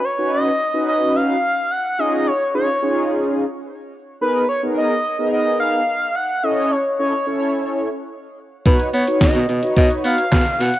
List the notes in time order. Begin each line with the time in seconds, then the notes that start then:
0.04 C#5
0.18 C#4 D#4 F#4 B4
0.32 D#5
0.74 C#4 D#4 F#4 B4
0.88 D#5
1.16 F5
1.71 F#5
1.99 C#4 D#4 F4 G#4 D#5
2.27 C#5
2.54 C#4 D#4 F4 G#4 C#5
2.82 C#4 D#4 F4 G#4
4.21 B3 D#4 G#4 A#4 B4
4.49 C#5
4.63 B3 D#4 G#4 A#4
4.77 D#5
5.19 B3 D#4 G#4 A#4
5.32 D#5
5.60 F5
6.15 F#5
6.43 C#4 E4 A4 C#5 D#5
6.71 C#5
6.99 C#4 E4 A4 C#5 D#5
7.27 C#4 E4 A4 C#5
8.65 B2 D#4 F#4 B4 C#5, kick, closed hi-hat
8.79 closed hi-hat
8.93 B3 C#5, closed hi-hat
9.07 D#4 F#4 B4 C#5, closed hi-hat
9.21 D#5, kick, snare, closed hi-hat
9.35 B2, closed hi-hat
9.49 B2, closed hi-hat
9.63 D#4 F#4 B4 C#5, closed hi-hat
9.76 B2 D#5, kick, closed hi-hat
9.90 closed hi-hat
10.04 B3 F5, closed hi-hat
10.18 closed hi-hat
10.32 B2, kick, snare, clap, closed hi-hat
10.46 closed hi-hat
10.60 B2 F#5, open hi-hat
10.74 closed hi-hat